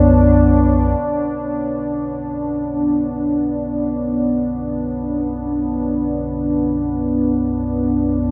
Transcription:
Already playing: B1 F#2 B3 D4 C#5
1.00 B1 F#2 B3

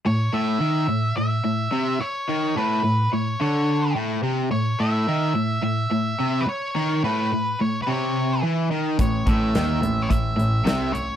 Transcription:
0.06 A2 C#5
0.34 A2 E5
0.61 D#3
0.89 A2
1.17 A2 E5
1.44 A2
1.72 C3
2.01 C#5, muted overdriven electric guitar stroke
2.29 D#3
2.57 A2 B4
2.84 A2
3.13 A2 C#5
3.41 D3 C#5
3.96 A2
4.23 C3
4.51 A2 C#5
4.80 A2 E5
5.08 D#3
5.35 A2
5.63 A2 E5
5.92 A2
6.20 C3
6.41 B4
6.47 C#5, muted overdriven electric guitar stroke
6.76 D#3
7.04 A2 B4
7.33 A2
7.61 A2 C#5
7.82 B4
7.87 C3 C#5
8.43 E3
8.71 D#3
8.99 A1 A2 C#5, kick, closed hi-hat
9.27 A1 A2 E5, kick, closed hi-hat
9.55 D#2 D#3, snare, closed hi-hat
9.82 A1 A2, closed hi-hat
10.02 C#5
10.09 A1 A2 E5, kick, closed hi-hat
10.37 A1 A2, closed hi-hat
10.65 C2 C3, snare, closed hi-hat
10.93 A1 C#5, muted overdriven electric guitar stroke, closed hi-hat

